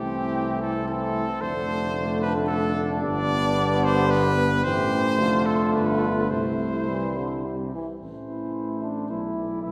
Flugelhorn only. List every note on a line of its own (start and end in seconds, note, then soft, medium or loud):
0.00 0.86 C4 medium
0.89 1.41 C4 medium
1.42 4.48 D4 medium
4.65 5.23 G4 medium
5.21 6.30 F4 medium
6.30 7.71 E4 medium
8.29 8.80 E4 soft
8.83 9.11 D4 soft
9.10 9.62 E4 medium
9.63 9.72 E4 medium